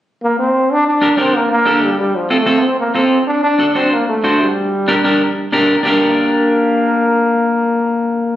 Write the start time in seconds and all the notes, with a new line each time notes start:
0.23 A#3
0.39 C4
0.72 D4
0.87 D4
1.01 D4 G4 A#4
1.17 C4 D4 G4 A#4
1.35 A#3
1.51 A#3
1.65 D4 G4 A4
1.83 G3
2.00 G3
2.15 F3
2.30 A3 C4 F4 A4
2.46 C4 F4 A4
2.63 C4
2.79 A#3
2.94 C4 F4 A4
3.27 D4
3.43 D4
3.59 D4 F#4 A4
3.75 C4 D4 F#4 C5
3.92 A#3
4.08 A3
4.24 D4 F#4 C5
4.41 G3
4.88 D4 G4 A#4
5.04 D4 G4 A#4
5.52 D4 G4 A#4
5.83 A#3 D4 G4 A#4